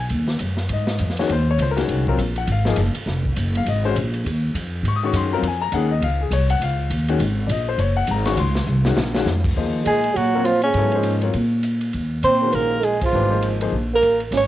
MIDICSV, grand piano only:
0, 0, Header, 1, 2, 480
1, 0, Start_track
1, 0, Tempo, 296296
1, 177, Time_signature, 4, 2, 24, 8
1, 23445, End_track
2, 0, Start_track
2, 0, Title_t, "Grand piano"
2, 0, Program_c, 0, 0
2, 1183, Note_on_c, 0, 75, 73
2, 1878, Note_off_c, 0, 75, 0
2, 1935, Note_on_c, 0, 73, 77
2, 1941, Note_on_c, 0, 51, 80
2, 1944, Note_on_c, 0, 66, 86
2, 1946, Note_on_c, 0, 56, 70
2, 1948, Note_on_c, 0, 61, 70
2, 2096, Note_off_c, 0, 51, 0
2, 2098, Note_off_c, 0, 66, 0
2, 2099, Note_off_c, 0, 56, 0
2, 2100, Note_off_c, 0, 61, 0
2, 2107, Note_off_c, 0, 73, 0
2, 2144, Note_on_c, 0, 72, 78
2, 2403, Note_off_c, 0, 72, 0
2, 2442, Note_on_c, 0, 73, 96
2, 2601, Note_off_c, 0, 73, 0
2, 2629, Note_on_c, 0, 72, 82
2, 2760, Note_off_c, 0, 72, 0
2, 2773, Note_on_c, 0, 70, 71
2, 2860, Note_on_c, 0, 66, 82
2, 2862, Note_on_c, 0, 51, 63
2, 2868, Note_on_c, 0, 56, 65
2, 2871, Note_on_c, 0, 61, 63
2, 2912, Note_off_c, 0, 70, 0
2, 2933, Note_on_c, 0, 73, 75
2, 3316, Note_off_c, 0, 51, 0
2, 3316, Note_off_c, 0, 66, 0
2, 3319, Note_off_c, 0, 56, 0
2, 3321, Note_off_c, 0, 61, 0
2, 3364, Note_off_c, 0, 73, 0
2, 3373, Note_on_c, 0, 60, 67
2, 3375, Note_on_c, 0, 54, 80
2, 3376, Note_on_c, 0, 65, 67
2, 3383, Note_on_c, 0, 70, 81
2, 3532, Note_off_c, 0, 60, 0
2, 3533, Note_off_c, 0, 54, 0
2, 3534, Note_off_c, 0, 65, 0
2, 3537, Note_off_c, 0, 70, 0
2, 3852, Note_on_c, 0, 78, 80
2, 4025, Note_off_c, 0, 78, 0
2, 4080, Note_on_c, 0, 77, 81
2, 4309, Note_on_c, 0, 53, 86
2, 4323, Note_on_c, 0, 63, 73
2, 4325, Note_on_c, 0, 58, 74
2, 4329, Note_on_c, 0, 68, 90
2, 4480, Note_off_c, 0, 53, 0
2, 4487, Note_off_c, 0, 63, 0
2, 4488, Note_off_c, 0, 58, 0
2, 4490, Note_off_c, 0, 68, 0
2, 4498, Note_off_c, 0, 77, 0
2, 5787, Note_on_c, 0, 77, 81
2, 5952, Note_off_c, 0, 77, 0
2, 5967, Note_on_c, 0, 75, 79
2, 6235, Note_on_c, 0, 56, 84
2, 6241, Note_on_c, 0, 72, 87
2, 6244, Note_on_c, 0, 61, 74
2, 6253, Note_on_c, 0, 66, 71
2, 6398, Note_off_c, 0, 75, 0
2, 6401, Note_off_c, 0, 56, 0
2, 6405, Note_off_c, 0, 72, 0
2, 6406, Note_off_c, 0, 61, 0
2, 6410, Note_off_c, 0, 66, 0
2, 7904, Note_on_c, 0, 85, 77
2, 8032, Note_off_c, 0, 85, 0
2, 8034, Note_on_c, 0, 87, 83
2, 8149, Note_on_c, 0, 51, 74
2, 8158, Note_on_c, 0, 61, 68
2, 8161, Note_on_c, 0, 56, 65
2, 8165, Note_on_c, 0, 66, 77
2, 8177, Note_off_c, 0, 87, 0
2, 8183, Note_on_c, 0, 85, 87
2, 8331, Note_off_c, 0, 85, 0
2, 8364, Note_on_c, 0, 84, 84
2, 8593, Note_off_c, 0, 51, 0
2, 8598, Note_off_c, 0, 61, 0
2, 8599, Note_off_c, 0, 56, 0
2, 8601, Note_off_c, 0, 66, 0
2, 8627, Note_off_c, 0, 84, 0
2, 8631, Note_on_c, 0, 54, 82
2, 8633, Note_on_c, 0, 82, 78
2, 8636, Note_on_c, 0, 60, 71
2, 8643, Note_on_c, 0, 65, 67
2, 8649, Note_on_c, 0, 70, 83
2, 8795, Note_off_c, 0, 54, 0
2, 8797, Note_off_c, 0, 60, 0
2, 8800, Note_off_c, 0, 65, 0
2, 8804, Note_off_c, 0, 70, 0
2, 8809, Note_off_c, 0, 82, 0
2, 8872, Note_on_c, 0, 80, 84
2, 9095, Note_on_c, 0, 82, 108
2, 9120, Note_off_c, 0, 80, 0
2, 9279, Note_off_c, 0, 82, 0
2, 9294, Note_on_c, 0, 56, 60
2, 9295, Note_on_c, 0, 51, 73
2, 9296, Note_on_c, 0, 78, 81
2, 9298, Note_on_c, 0, 61, 63
2, 9300, Note_on_c, 0, 68, 78
2, 9548, Note_off_c, 0, 56, 0
2, 9549, Note_off_c, 0, 51, 0
2, 9550, Note_off_c, 0, 61, 0
2, 9551, Note_off_c, 0, 68, 0
2, 9569, Note_off_c, 0, 78, 0
2, 9577, Note_on_c, 0, 75, 80
2, 9759, Note_off_c, 0, 75, 0
2, 9776, Note_on_c, 0, 77, 88
2, 10048, Note_off_c, 0, 77, 0
2, 10053, Note_on_c, 0, 68, 57
2, 10235, Note_off_c, 0, 68, 0
2, 10256, Note_on_c, 0, 73, 86
2, 10527, Note_off_c, 0, 73, 0
2, 10535, Note_on_c, 0, 78, 97
2, 10715, Note_off_c, 0, 78, 0
2, 10748, Note_on_c, 0, 77, 83
2, 11445, Note_off_c, 0, 77, 0
2, 11489, Note_on_c, 0, 56, 75
2, 11490, Note_on_c, 0, 51, 78
2, 11494, Note_on_c, 0, 61, 73
2, 11501, Note_on_c, 0, 66, 88
2, 11656, Note_off_c, 0, 56, 0
2, 11657, Note_off_c, 0, 51, 0
2, 11659, Note_off_c, 0, 61, 0
2, 11662, Note_off_c, 0, 66, 0
2, 12097, Note_on_c, 0, 74, 54
2, 12135, Note_off_c, 0, 74, 0
2, 12170, Note_on_c, 0, 75, 80
2, 12439, Note_off_c, 0, 75, 0
2, 12451, Note_on_c, 0, 72, 78
2, 12629, Note_off_c, 0, 72, 0
2, 12629, Note_on_c, 0, 73, 79
2, 12905, Note_on_c, 0, 78, 97
2, 12907, Note_off_c, 0, 73, 0
2, 13094, Note_off_c, 0, 78, 0
2, 13140, Note_on_c, 0, 82, 82
2, 13378, Note_on_c, 0, 85, 97
2, 13391, Note_on_c, 0, 51, 74
2, 13394, Note_on_c, 0, 66, 83
2, 13396, Note_on_c, 0, 61, 62
2, 13397, Note_on_c, 0, 56, 68
2, 13402, Note_off_c, 0, 82, 0
2, 13563, Note_off_c, 0, 51, 0
2, 13564, Note_off_c, 0, 66, 0
2, 13565, Note_off_c, 0, 61, 0
2, 13566, Note_off_c, 0, 56, 0
2, 13569, Note_off_c, 0, 85, 0
2, 13594, Note_on_c, 0, 84, 87
2, 14356, Note_on_c, 0, 61, 70
2, 14357, Note_on_c, 0, 51, 73
2, 14364, Note_on_c, 0, 56, 63
2, 14374, Note_on_c, 0, 66, 83
2, 14481, Note_off_c, 0, 84, 0
2, 14524, Note_off_c, 0, 61, 0
2, 14525, Note_off_c, 0, 51, 0
2, 14528, Note_off_c, 0, 56, 0
2, 14533, Note_off_c, 0, 66, 0
2, 14835, Note_on_c, 0, 51, 77
2, 14837, Note_on_c, 0, 56, 79
2, 14841, Note_on_c, 0, 61, 78
2, 14845, Note_on_c, 0, 66, 90
2, 15003, Note_off_c, 0, 51, 0
2, 15004, Note_off_c, 0, 56, 0
2, 15006, Note_off_c, 0, 61, 0
2, 15008, Note_off_c, 0, 66, 0
2, 15502, Note_on_c, 0, 58, 49
2, 15504, Note_on_c, 0, 53, 56
2, 15509, Note_on_c, 0, 63, 53
2, 15509, Note_on_c, 0, 68, 49
2, 15513, Note_on_c, 0, 72, 62
2, 16212, Note_off_c, 0, 58, 0
2, 16213, Note_off_c, 0, 53, 0
2, 16216, Note_off_c, 0, 63, 0
2, 16216, Note_off_c, 0, 68, 0
2, 16218, Note_off_c, 0, 72, 0
2, 16760, Note_on_c, 0, 54, 67
2, 16761, Note_on_c, 0, 60, 62
2, 16764, Note_on_c, 0, 73, 70
2, 16766, Note_on_c, 0, 65, 61
2, 16771, Note_on_c, 0, 70, 63
2, 16927, Note_off_c, 0, 54, 0
2, 16927, Note_off_c, 0, 60, 0
2, 16929, Note_off_c, 0, 73, 0
2, 16930, Note_off_c, 0, 65, 0
2, 16932, Note_off_c, 0, 70, 0
2, 17451, Note_on_c, 0, 54, 53
2, 17455, Note_on_c, 0, 64, 53
2, 17456, Note_on_c, 0, 69, 54
2, 17458, Note_on_c, 0, 59, 50
2, 17460, Note_on_c, 0, 73, 65
2, 17698, Note_off_c, 0, 54, 0
2, 17700, Note_off_c, 0, 64, 0
2, 17700, Note_off_c, 0, 69, 0
2, 17701, Note_off_c, 0, 59, 0
2, 17703, Note_off_c, 0, 73, 0
2, 17737, Note_on_c, 0, 63, 49
2, 17738, Note_on_c, 0, 58, 48
2, 17740, Note_on_c, 0, 72, 63
2, 17741, Note_on_c, 0, 68, 53
2, 17743, Note_on_c, 0, 53, 56
2, 18148, Note_off_c, 0, 63, 0
2, 18149, Note_off_c, 0, 58, 0
2, 18150, Note_off_c, 0, 72, 0
2, 18151, Note_off_c, 0, 68, 0
2, 18152, Note_off_c, 0, 53, 0
2, 18185, Note_on_c, 0, 60, 46
2, 18189, Note_on_c, 0, 54, 54
2, 18198, Note_on_c, 0, 70, 51
2, 18199, Note_on_c, 0, 73, 57
2, 18207, Note_on_c, 0, 65, 53
2, 18362, Note_off_c, 0, 60, 0
2, 18364, Note_off_c, 0, 54, 0
2, 18369, Note_off_c, 0, 70, 0
2, 18369, Note_off_c, 0, 73, 0
2, 18373, Note_off_c, 0, 65, 0
2, 20114, Note_on_c, 0, 51, 56
2, 20122, Note_on_c, 0, 56, 52
2, 20131, Note_on_c, 0, 66, 49
2, 20133, Note_on_c, 0, 70, 60
2, 20137, Note_on_c, 0, 61, 51
2, 20755, Note_off_c, 0, 51, 0
2, 20759, Note_off_c, 0, 56, 0
2, 20764, Note_off_c, 0, 66, 0
2, 20765, Note_off_c, 0, 70, 0
2, 20767, Note_off_c, 0, 61, 0
2, 21286, Note_on_c, 0, 62, 50
2, 21291, Note_on_c, 0, 52, 55
2, 21292, Note_on_c, 0, 67, 50
2, 21293, Note_on_c, 0, 57, 48
2, 21299, Note_on_c, 0, 71, 59
2, 21545, Note_off_c, 0, 62, 0
2, 21548, Note_off_c, 0, 52, 0
2, 21549, Note_off_c, 0, 57, 0
2, 21549, Note_off_c, 0, 67, 0
2, 21552, Note_off_c, 0, 71, 0
2, 21555, Note_on_c, 0, 58, 48
2, 21556, Note_on_c, 0, 53, 57
2, 21563, Note_on_c, 0, 63, 47
2, 21563, Note_on_c, 0, 68, 50
2, 21566, Note_on_c, 0, 72, 61
2, 21988, Note_off_c, 0, 58, 0
2, 21989, Note_off_c, 0, 53, 0
2, 21992, Note_off_c, 0, 63, 0
2, 21993, Note_off_c, 0, 68, 0
2, 21994, Note_off_c, 0, 72, 0
2, 22062, Note_on_c, 0, 58, 54
2, 22063, Note_on_c, 0, 63, 54
2, 22068, Note_on_c, 0, 53, 64
2, 22070, Note_on_c, 0, 68, 59
2, 22072, Note_on_c, 0, 72, 67
2, 22231, Note_off_c, 0, 58, 0
2, 22232, Note_off_c, 0, 63, 0
2, 22234, Note_off_c, 0, 53, 0
2, 22235, Note_off_c, 0, 68, 0
2, 22237, Note_off_c, 0, 72, 0
2, 23445, End_track
0, 0, End_of_file